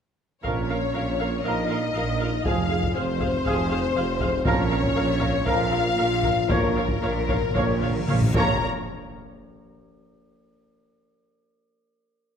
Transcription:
0.43 tuba A#1, double bass section A#1, trombone section F2 F3, cello section A#2, french horn section C#4, viola section A#4 F5, trumpet section A#4, violin section C#5, taiko
0.69 viola section A#4 F5
0.93 tuba A#1, double bass section A#1, cello section A#2, viola section A#4 F5
1.19 viola section A#4 F5
1.44 tuba A#1, double bass section A#1, trombone section F2 F3, cello section A#2, viola section A#4 F5, trumpet section A#4, violin section D#5
1.69 viola section A#4 F5
1.94 tuba A#1, double bass section A#1, cello section A#2, viola section A#4 F5
2.20 viola section A#4 F5
2.45 tuba F1, double bass section F1, cello section F2, trombone section F2 F3, french horn section F4, viola section G#4 F5, trumpet section G#4, violin section F5, taiko
2.69 viola section G#4 F5
2.83 taiko
2.95 double bass section F1, tuba F1, cello section F2, french horn section C4, viola section G#4 F5, violin section C5
3.20 viola section G#4 F5, taiko
3.45 tuba F1, double bass section F1, trombone section F2 F3, cello section F2, viola section G#4 F5, trumpet section G#4, taiko
3.71 viola section G#4 F5
3.95 tuba F1, double bass section F1, cello section F2, viola section G#4 F5
4.20 viola section G#4 F5, taiko
4.44 tuba A#1, double bass section A#1, trombone section F2 F3, timpani A#2, cello section A#2, french horn section C#4, viola section A#4 F5, trumpet section A#4, violin section C#5, taiko
4.70 viola section A#4 F5
4.83 taiko
4.96 tuba A#1, double bass section A#1, cello section A#2, viola section A#4 F5
5.21 viola section A#4 F5, taiko
5.46 double bass section A#1, tuba A#1, trombone section F2 F3, cello section A#2, french horn section F4, viola section A#4 F5, trumpet section A#4, violin section F5, taiko
5.72 viola section A#4 F5
5.97 double bass section A#1, tuba A#1, cello section A#2, viola section A#4 F5
6.23 viola section A#4 F5, taiko
6.48 double bass section A#1, tuba A#1, trombone section F2 F3, cello section A#2, french horn section A#3, violin section A#4, viola section C#5 F5, trumpet section C#5, taiko, reverse cymbal
6.72 timpani A#2, viola section F5
6.76 viola section C#5
6.89 taiko
6.96 timpani A#2
7.02 double bass section A#1, tuba A#1, cello section A#2, timpani A#2, viola section C#5 F5
7.12 timpani A#2
7.20 timpani A#2
7.27 timpani A#2, viola section C#5 F5, taiko
7.35 timpani A#2
7.43 timpani A#2
7.51 tuba A#1, trombone section F2, timpani A#2, viola section C#5 F5
7.55 double bass section A#1, cello section A#2, timpani A#2, trombone section F3, trumpet section C#5, taiko
7.67 timpani A#2
7.74 timpani A#2
7.82 timpani A#2, viola section C#5 F5
7.89 timpani A#2
7.98 timpani A#2
8.06 tuba A#1, double bass section A#1, timpani A#2, cello section A#2, viola section C#5 F5, taiko mid
8.14 timpani A#2
8.21 timpani A#2, taiko low-mid
8.31 tuba A#1, timpani A#2, taiko
8.35 double bass section A#1, trombone section F2 F3, timpani A#2, cello section A#2, french horn section A#3, viola section A#4 C#5, trumpet section C#5, violin section A#5, impact

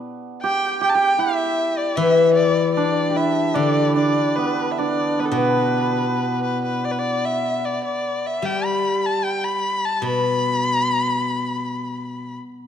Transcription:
Already playing: hammered dulcimer B3 D4
0.42 hammered dulcimer G4, erhu G5
0.81 hammered dulcimer G4, erhu G5
0.89 erhu A5
0.95 hammered dulcimer G4, erhu G5
1.18 hammered dulcimer E4, erhu E5
1.78 erhu D5
1.96 guzheng E3, hammered dulcimer E4, erhu E5
2.34 erhu D5
2.75 hammered dulcimer D4, erhu D5
3.10 hammered dulcimer G4
3.16 hammered dulcimer E4, erhu E5
3.54 guzheng D3, hammered dulcimer D4, erhu D5
3.88 hammered dulcimer E4
3.96 hammered dulcimer D4, erhu D5
4.36 hammered dulcimer B3, erhu B4
4.71 erhu E5
4.78 hammered dulcimer D4, erhu D5
5.19 hammered dulcimer B3, erhu B4
5.25 erhu A4
5.32 guzheng B2, hammered dulcimer B3, erhu B4
6.44 erhu B4
6.65 erhu B4
6.85 erhu D5
6.91 erhu B4
6.99 erhu D5
7.25 erhu E5
7.65 erhu D5
7.85 erhu D5
8.26 erhu E5
8.42 guzheng G3, erhu G5
8.65 erhu B5
9.06 erhu A5
9.24 erhu G5
9.44 erhu B5
9.85 erhu A5
10.02 guzheng B2
10.07 erhu B5

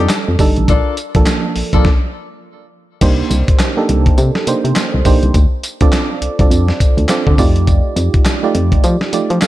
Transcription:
Already playing: fm electric piano G3 D4 D#4 A4
0.00 horn section D4 D#4 G4 A4 D5
0.09 snare, clap, closed hi-hat, tambourine
0.28 fm bass F2
0.39 fm bass G1, fm electric piano G3 D4 D#4 A4, kick, open hi-hat, tambourine
0.56 fm bass A1, closed hi-hat
0.68 fm bass A#1, horn section D4 F4 A4 A#4 D5, kick, closed hi-hat, tambourine
0.97 closed hi-hat, tambourine
1.15 fm bass A#1, fm electric piano F3 A#3 D4 A4, kick, closed hi-hat
1.26 snare, clap, closed hi-hat, tambourine
1.56 fm bass A#1, open hi-hat
1.73 fm bass A#1, fm electric piano F3 A#3 D4 A4, horn section D4 F4 A4 A#4 D5, kick, closed hi-hat
1.85 kick, snare
3.01 fm bass C2, fm electric piano A#3 D4 D#4 G4 C5, kick, closed hi-hat, crash, tambourine
3.30 fm bass C2, closed hi-hat, tambourine
3.48 kick, closed hi-hat
3.59 snare, clap, closed hi-hat, tambourine
3.77 fm electric piano A#3 D4 D#4 G4 A4
3.89 fm bass C2, closed hi-hat
4.06 kick, closed hi-hat
4.18 fm bass C3, closed hi-hat, tambourine
4.35 snare
4.47 fm bass C3, fm electric piano A#3 D4 D#4 G4 C5, closed hi-hat, tambourine
4.64 fm bass C3, closed hi-hat
4.76 snare, clap, closed hi-hat, tambourine
4.94 fm bass C2
5.05 fm bass A#1, fm electric piano A#3 D4 D#4 G4 C5, kick, open hi-hat, tambourine
5.23 fm bass C2, closed hi-hat
5.34 fm bass D2, kick, closed hi-hat, tambourine
5.63 closed hi-hat, tambourine
5.81 fm bass D2, fm electric piano C4 D4 F4 A4 D5, kick, closed hi-hat
5.92 snare, clap, closed hi-hat, tambourine
6.22 fm bass C2, closed hi-hat
6.39 fm bass C2, fm electric piano C4 D4 F4 A4 D5, kick, closed hi-hat
6.51 fm bass F2, closed hi-hat, tambourine
6.68 snare
6.80 kick, closed hi-hat, tambourine
6.97 fm bass D2, closed hi-hat
7.08 fm electric piano C4 D4 F4 A4 D5, snare, clap, closed hi-hat, tambourine
7.27 fm bass D3, kick
7.38 fm bass F2, fm electric piano A3 D#4 F4 G4 D5, kick, open hi-hat, tambourine
7.56 closed hi-hat
7.67 kick, closed hi-hat, tambourine
7.96 fm bass F2, closed hi-hat, tambourine
8.14 kick, closed hi-hat
8.25 snare, clap, closed hi-hat, tambourine
8.43 fm electric piano A3 D#4 F4 G4 D5
8.55 fm bass F2, closed hi-hat
8.72 kick, closed hi-hat
8.84 fm bass F3, closed hi-hat, tambourine
9.01 snare
9.13 fm bass F3, fm electric piano A3 D#4 F4 G4 D5, closed hi-hat, tambourine
9.30 fm bass F3, closed hi-hat
9.41 fm electric piano A4 F5, snare, clap, closed hi-hat, tambourine

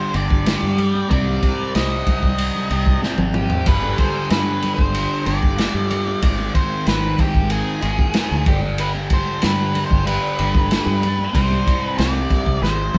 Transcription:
Already playing: distorted electric guitar G2 D3 G3, string section G3 G4, lead electric guitar C5
0.12 fingered electric bass G1, distorted electric guitar G2 D3 G3, lead electric guitar D5, ride, high conga
0.30 kick
0.46 snare, ride, high conga
0.63 fingered electric bass G2
0.78 ride, low conga
0.94 high conga
1.08 fingered electric bass C2, distorted electric guitar C3 G3 C4, string section C4 D#4, lead electric guitar D5, kick, ride
1.26 high conga
1.43 kick, ride
1.75 fingered electric bass C2, lead electric guitar D#5, snare, ride
2.07 kick, ride, low conga
2.23 fingered electric bass C2, kick
2.38 ride
2.55 low conga
2.69 fingered electric bass C2, distorted electric guitar C3 G3 C4, ride, high conga
2.86 kick
3.01 distorted electric guitar C3 G3 C4, snare, high conga
3.18 fingered electric bass G#1, high tom
3.34 lead electric guitar G4, mid tom, low conga
3.50 floor tom
3.65 fingered electric bass G1, distorted electric guitar G2 D3, string section D4 G4, lead electric guitar B4, kick, crash, ride
3.69 distorted electric guitar G3
3.82 high conga
3.98 lead electric guitar C5, kick, ride
4.30 fingered electric bass G2, lead electric guitar B4, snare, ride
4.62 ride, low conga
4.75 fingered electric bass G1, lead electric guitar C5, kick
4.94 ride
5.25 fingered electric bass G1, distorted electric guitar G2 D3 G3, lead electric guitar D5, ride, high conga
5.43 kick
5.57 distorted electric guitar G2 D3 G3, snare, ride, high conga
5.74 fingered electric bass G2
5.91 ride, low conga
6.07 high conga
6.21 fingered electric bass G#1, distorted electric guitar G#2 D#3 G#3, string section G#3 C4 F4, lead electric guitar D5, kick, ride
6.39 high conga
6.55 lead electric guitar C5, kick, ride
6.87 fingered electric bass G#1, lead electric guitar B4, snare, ride
7.18 lead electric guitar G4, kick, ride, low conga
7.35 fingered electric bass G#1, kick
7.50 lead electric guitar G#4, ride
7.82 fingered electric bass G#1, distorted electric guitar G#2 D#3 G#3, ride
7.99 kick
8.13 distorted electric guitar G#2 D#3 G#3, snare, ride, high conga
8.31 fingered electric bass D2
8.45 fingered electric bass G1, distorted electric guitar G2 D3 G3, string section G3 D4 G4, lead electric guitar G4, kick, ride, low conga
8.62 high conga
8.78 lead electric guitar B4, ride
8.95 high conga
9.10 lead electric guitar C5, kick, ride
9.42 fingered electric bass G2, lead electric guitar B4, snare, ride
9.75 ride, low conga
9.86 lead electric guitar C5
9.91 fingered electric bass G1, kick
10.06 distorted electric guitar G2 D3 G3, lead electric guitar B4, ride
10.38 fingered electric bass G1, distorted electric guitar G2 D3 G3, ride, high conga
10.55 kick
10.71 snare, ride, high conga
10.86 fingered electric bass G2
11.03 ride, low conga
11.18 high conga
11.33 fingered electric bass C2, distorted electric guitar C3 G3 C4, string section C4 D#4, lead electric guitar C5, kick, ride
11.51 high conga
11.67 kick, ride
11.83 lead electric guitar B4
11.98 fingered electric bass C2, lead electric guitar D5, snare, ride
12.14 high conga
12.30 kick, ride, low conga
12.46 fingered electric bass C2, kick
12.62 fingered electric bass G#1, distorted electric guitar G#2 D#3 G#3, string section G#3, lead electric guitar C5, snare
12.94 fingered electric bass G#1, high tom, high conga

